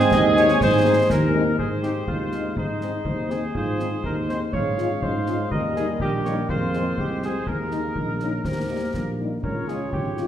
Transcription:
0.00 1.31 G#3 loud
0.00 1.31 C4 loud
0.00 1.07 G#4 loud
0.00 1.31 G#5 loud
0.00 snare medium
0.12 0.53 D#2 medium
0.12 0.24 D#5 loud
0.12 concert bass drum medium
0.12 snare medium
0.35 0.45 G#3 medium
0.35 0.45 C4 medium
0.35 0.45 D#4 medium
0.35 0.60 C#5 medium
0.35 snare medium
0.48 snare medium
0.61 1.02 G#2 medium
0.61 1.08 C5 medium
0.61 concert bass drum medium
0.61 snare medium
0.84 0.93 G#3 medium
0.84 0.93 C4 medium
0.84 0.93 D#4 medium
1.10 1.51 D#2 medium
1.10 1.59 A#4 medium
1.10 1.56 A#4 medium
1.10 concert bass drum medium
1.10 snare medium
1.34 1.43 G#3 medium
1.34 1.43 C4 medium
1.34 1.43 D#4 medium
1.58 2.00 G#2 medium
1.58 2.09 C4 medium
1.58 2.53 G#4 soft
1.58 1.70 G#4 medium
1.58 2.53 C5 soft
1.58 concert bass drum medium
1.82 1.91 G#3 soft
1.82 1.92 C4 soft
1.82 1.92 D#4 soft
1.82 2.06 G4 medium
1.82 snare soft
2.07 2.49 D#2 soft
2.07 3.06 G#3 soft
2.07 2.59 F4 medium
2.07 concert bass drum medium
2.32 2.41 G#3 soft
2.32 2.41 C4 soft
2.32 2.42 D#4 soft
2.32 snare soft
2.57 2.98 G#2 soft
2.57 3.32 D#4 medium
2.57 3.51 G#4 soft
2.57 3.51 C5 soft
2.57 concert bass drum medium
2.81 2.90 G#3 soft
2.81 2.90 C4 soft
2.81 2.91 D#4 soft
2.81 snare soft
3.05 3.47 D#2 soft
3.05 3.53 C4 soft
3.05 concert bass drum medium
3.30 3.39 G#3 soft
3.30 3.39 C4 soft
3.30 3.39 D#4 soft
3.30 4.04 G#4 medium
3.30 snare soft
3.54 3.96 G#2 medium
3.54 4.05 F4 medium
3.54 4.50 G#4 soft
3.54 4.49 C5 soft
3.54 concert bass drum medium
3.78 3.87 G#3 soft
3.78 3.87 C4 soft
3.78 3.88 D#4 soft
3.78 snare soft
4.03 4.45 D#2 medium
4.03 4.53 D#4 soft
4.03 4.16 A#4 medium
4.03 concert bass drum medium
4.27 4.37 G#3 soft
4.27 4.37 C4 soft
4.27 4.37 D#4 soft
4.27 4.40 C5 medium
4.27 snare soft
4.53 4.94 G#2 medium
4.53 4.99 C#4 medium
4.53 5.48 G#4 medium
4.53 5.04 C#5 medium
4.53 5.52 F5 medium
4.53 concert bass drum medium
4.77 4.86 G#3 soft
4.77 4.86 C#4 medium
4.77 4.86 F4 medium
4.77 snare soft
5.02 5.43 G#2 medium
5.02 5.48 G#3 medium
5.02 5.53 C5 medium
5.02 concert bass drum medium
5.26 5.35 G#3 medium
5.26 5.36 C#4 soft
5.26 5.35 F4 soft
5.26 snare soft
5.51 5.92 D#2 medium
5.51 6.51 G3 medium
5.51 6.00 A#4 medium
5.51 5.76 A#4 medium
5.51 5.97 D#5 medium
5.51 concert bass drum medium
5.76 5.85 G3 medium
5.76 5.85 A#3 medium
5.76 5.85 D#4 medium
5.76 5.87 G#4 medium
5.76 snare soft
6.00 6.41 A#1 medium
6.00 6.51 G4 medium
6.00 6.47 A#4 medium
6.00 6.12 D#5 medium
6.00 concert bass drum medium
6.24 6.34 G3 soft
6.24 6.34 A#3 medium
6.24 6.34 D#4 soft
6.24 6.36 C#5 medium
6.24 snare soft
6.49 6.90 F2 medium
6.49 7.01 A#3 medium
6.49 7.01 F4 medium
6.49 7.46 G#4 medium
6.49 7.43 C5 medium
6.49 concert bass drum medium
6.73 6.83 G#3 soft
6.73 6.83 C4 soft
6.73 snare soft
6.98 7.36 C2 medium
6.98 7.48 G#3 medium
6.98 7.23 G4 medium
6.98 concert bass drum medium
7.22 7.31 G#3 soft
7.22 7.31 C4 soft
7.22 7.50 G#4 medium
7.22 snare soft
7.46 7.88 D#2 soft
7.46 7.91 A#3 soft
7.46 8.41 G#4 soft
7.46 8.45 A#4 soft
7.46 8.95 A#4 medium
7.46 concert bass drum medium
7.71 7.80 G#3 soft
7.71 7.80 A#3 soft
7.71 7.80 D#4 soft
7.71 snare soft
7.96 8.37 A#1 soft
7.96 8.07 D#4 medium
7.96 concert bass drum medium
8.20 8.30 G#3 soft
8.20 8.30 A#3 soft
8.20 8.32 C#4 soft
8.20 8.30 D#4 soft
8.20 snare soft
8.44 8.86 D#2 soft
8.44 8.90 C4 medium
8.44 9.19 G4 soft
8.44 9.15 A#4 soft
8.44 concert bass drum medium
8.44 snare soft
8.70 8.79 G3 soft
8.70 8.79 A#3 soft
8.70 8.79 D#4 soft
8.94 9.35 A#1 soft
8.94 9.40 A#3 soft
8.94 concert bass drum medium
8.94 snare soft
9.19 9.28 G3 soft
9.19 9.28 A#3 soft
9.19 9.28 D#4 soft
9.42 9.84 C#2 soft
9.42 10.27 C#4 medium
9.42 10.27 F4 soft
9.42 9.70 A#4 medium
9.42 10.27 C#5 soft
9.42 concert bass drum medium
9.68 9.77 G#3 soft
9.68 9.77 C#4 soft
9.68 9.77 F4 soft
9.68 9.92 G#4 medium
9.68 snare soft
9.93 10.27 G#1 soft
9.93 10.27 G4 medium
9.93 concert bass drum medium
10.17 10.26 G#3 soft
10.17 10.26 C#4 soft
10.17 10.26 F4 soft
10.17 snare soft

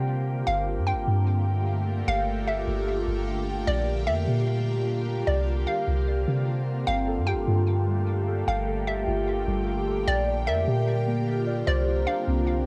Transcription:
0.00 0.45 C3 loud
0.00 0.44 D3 medium
0.00 0.46 A#3 medium
0.00 0.46 C4 medium
0.00 0.44 F4 medium
0.00 0.44 G4 medium
0.47 0.79 G1 loud
0.47 10.03 D3 medium
0.47 3.64 A3 medium
0.47 10.03 A#3 medium
0.47 10.03 F4 medium
0.47 6.83 G4 medium
0.47 0.85 F5 loud
0.78 0.94 G2 loud
0.87 1.63 G5 medium
0.92 1.07 G1 medium
1.07 2.03 G2 loud
2.08 2.65 G1 loud
2.08 2.45 F5 loud
2.48 3.24 E5 medium
2.67 3.06 G1 loud
3.07 3.65 G1 loud
3.67 4.09 A#1 loud
3.67 5.26 G3 medium
3.67 4.05 D5 loud
4.07 4.27 F2 loud
4.07 4.83 E5 loud
4.28 5.24 A#2 loud
5.27 5.66 C2 loud
5.27 6.86 C4 medium
5.27 5.65 D5 loud
5.67 6.05 F5 medium
5.88 6.26 C2 loud
6.28 6.85 C3 loud
6.87 7.19 G1 loud
6.87 10.04 A3 medium
6.87 12.66 G4 medium
6.87 7.25 F5 loud
6.87 8.08 G5 loud
7.08 8.26 A4 medium
7.18 7.34 G2 loud
7.27 8.48 G4 medium
7.27 8.03 G5 medium
7.33 7.47 G1 loud
7.48 8.44 G2 loud
7.48 8.68 F4 medium
7.87 9.07 G3 medium
8.28 8.66 A4 medium
8.47 9.05 G1 loud
8.47 8.85 F5 loud
8.47 9.67 G5 loud
8.68 9.86 A4 medium
8.87 10.07 G4 medium
8.87 9.63 E5 medium
9.07 9.46 G1 loud
9.07 10.07 F4 medium
9.47 10.05 G1 loud
9.47 10.07 G3 medium
9.87 10.07 A4 medium
10.07 10.49 A#1 loud
10.07 12.66 D3 medium
10.07 11.66 G3 medium
10.07 12.66 A#3 medium
10.07 12.66 F4 medium
10.07 10.45 D5 loud
10.07 11.27 G5 loud
10.27 11.46 D5 medium
10.47 10.67 F2 loud
10.47 11.68 A#4 loud
10.47 11.23 E5 medium
10.68 11.63 A#2 loud
10.68 11.68 G4 medium
11.08 11.68 A#3 medium
11.47 11.67 D5 medium
11.67 12.06 C2 loud
11.67 12.66 C4 medium
11.67 12.66 C5 loud
11.67 12.05 D5 loud
11.88 12.66 F4 medium
12.07 12.66 D4 medium
12.07 12.45 F5 medium
12.27 12.66 C2 loud
12.27 12.66 C4 medium

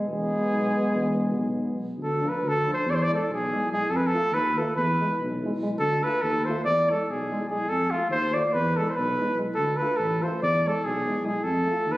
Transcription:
0.06 0.31 E1 medium
0.06 1.81 G#3 medium
0.06 1.79 B3 medium
0.11 1.59 G#4 medium
0.49 0.74 B1 medium
0.92 1.38 E1 medium
1.37 1.70 B1 medium
1.98 2.22 D2 medium
2.03 2.30 A4 medium
2.21 2.30 F3 soft
2.21 2.29 D4 soft
2.29 2.50 B4 medium
2.42 2.66 D2 medium
2.48 2.70 A4 loud
2.65 2.74 F3 soft
2.65 2.73 D4 medium
2.73 2.92 C5 medium
2.86 3.10 E2 medium
2.90 3.05 C5 medium
2.90 2.96 D5 loud
3.03 3.13 D5 loud
3.10 3.18 G#3 medium
3.10 3.17 E4 medium
3.14 3.30 A4 medium
3.29 3.62 B1 medium
3.29 3.69 G#4 medium
3.51 3.60 G#3 medium
3.51 3.58 E4 soft
3.71 3.79 G#3 medium
3.71 3.78 E4 medium
3.71 3.92 G#4 medium
3.89 4.13 F2 medium
3.89 3.98 A4 medium
3.97 4.08 B4 medium
4.07 4.36 A4 loud
4.13 4.22 A3 medium
4.13 4.21 F4 medium
4.32 4.56 D#2 medium
4.32 4.59 B4 medium
4.56 4.67 A3 medium
4.56 4.64 F4 medium
4.56 4.75 A4 medium
4.76 5.00 E2 medium
4.76 5.21 B4 medium
5.00 5.08 G#3 medium
5.00 5.09 E4 medium
5.21 5.52 B1 medium
5.44 5.51 G#3 medium
5.44 5.51 E4 medium
5.59 5.69 G#3 medium
5.59 5.67 E4 medium
5.79 6.02 D2 medium
5.79 6.05 A4 loud
6.03 6.13 A3 medium
6.03 6.10 F4 medium
6.03 6.24 B4 medium
6.22 6.46 D#2 medium
6.22 6.46 A4 loud
6.45 6.55 A3 medium
6.45 6.54 F4 medium
6.45 6.64 C5 medium
6.64 6.88 E2 medium
6.64 6.92 D5 loud
6.89 6.98 G#3 medium
6.89 6.96 E4 medium
6.89 7.12 A4 medium
7.09 7.41 B1 medium
7.09 7.49 G#4 medium
7.27 7.38 G#3 medium
7.27 7.35 E4 soft
7.49 7.57 G#3 medium
7.49 7.56 E4 medium
7.49 7.70 G#4 medium
7.66 7.90 F2 medium
7.66 7.92 A4 loud
7.90 7.98 A3 medium
7.90 7.98 F4 medium
7.90 8.10 F4 medium
8.09 8.33 D#2 medium
8.09 8.35 C5 loud
8.34 8.42 A3 medium
8.34 8.41 F4 medium
8.34 8.54 D5 medium
8.53 8.77 E2 medium
8.53 8.78 B4 medium
8.75 8.85 G#3 medium
8.75 8.83 E4 soft
8.75 8.91 A4 medium
8.90 8.96 C5 medium
8.95 9.30 B1 medium
8.95 9.40 B4 medium
9.18 9.25 G#3 soft
9.18 9.26 E4 soft
9.37 9.44 G#3 medium
9.37 9.46 E4 soft
9.55 9.80 D2 medium
9.55 9.78 A4 medium
9.77 9.87 A3 soft
9.77 9.87 F4 medium
9.77 9.98 B4 medium
9.97 10.22 A1 medium
9.97 10.24 A4 loud
10.21 10.31 A3 medium
10.21 10.29 F4 medium
10.21 10.41 C5 medium
10.42 10.66 E2 medium
10.42 10.69 D5 loud
10.64 10.72 G#3 medium
10.64 10.74 E4 medium
10.64 10.86 A4 medium
10.84 11.16 B1 medium
10.84 11.24 G#4 loud
11.06 11.13 G#3 medium
11.06 11.15 E4 soft
11.24 11.31 G#3 medium
11.24 11.33 E4 medium
11.24 11.45 G#4 medium
11.43 11.67 F2 medium
11.43 11.94 A4 medium
11.65 11.73 A3 soft
11.70 11.77 F4 medium
11.86 11.97 D#2 medium
11.92 11.97 B4 medium

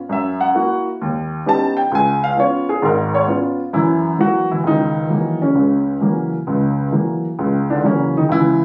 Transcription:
0.09 0.48 F#2 medium
0.09 0.39 E5 medium
0.41 0.82 F#5 medium
0.55 0.86 A#3 medium
0.55 0.86 E4 soft
0.55 0.86 F#4 medium
1.01 1.40 D#2 medium
1.46 1.77 B3 medium
1.46 1.77 C#4 soft
1.46 1.77 D#4 medium
1.46 1.77 G4 medium
1.46 1.76 A5 medium
1.77 1.91 G5 medium
1.91 2.31 C#2 medium
1.91 2.22 G#5 loud
2.24 2.38 F5 medium
2.37 2.68 B3 medium
2.37 2.68 C#4 medium
2.37 2.69 F4 medium
2.37 2.67 C#5 medium
2.69 2.83 G#4 medium
2.82 3.22 G#1 medium
2.82 3.22 G#2 medium
2.82 3.13 A#4 medium
3.15 3.23 C#5 medium
3.28 3.59 B3 medium
3.28 3.59 C#4 soft
3.28 3.59 F4 medium
3.73 4.13 F#2 medium
3.73 4.17 E3 medium
3.73 4.16 E4 medium
4.18 4.50 E3 soft
4.18 4.50 F#3 soft
4.18 4.50 A#3 medium
4.18 4.47 F#4 medium
4.51 4.57 E3 medium
4.51 4.56 E4 medium
4.64 5.04 C#2 medium
4.64 5.37 D#4 medium
4.68 5.38 D#3 medium
5.09 5.41 E3 soft
5.09 5.41 F#3 soft
5.09 5.42 A#3 medium
5.42 6.28 C#3 medium
5.42 6.28 C#4 medium
5.55 5.95 C#2 medium
6.01 6.33 E3 soft
6.01 6.33 F#3 soft
6.01 6.33 A#3 medium
6.47 6.87 C#2 medium
6.47 6.86 C#3 medium
6.92 7.24 E3 soft
6.92 7.24 F#3 soft
6.92 7.24 A#3 medium
7.39 7.78 C#2 medium
7.70 7.77 D3 medium
7.70 7.75 D4 medium
7.84 8.15 E3 medium
7.84 8.15 F#3 soft
7.84 8.15 A#3 medium
7.84 8.16 C#4 medium
7.88 8.14 C#3 medium
8.17 8.23 D#3 medium
8.17 8.22 D#4 medium
8.29 8.65 C#2 medium
8.29 8.65 C#3 medium
8.29 8.65 E4 loud
8.33 8.65 E3 medium

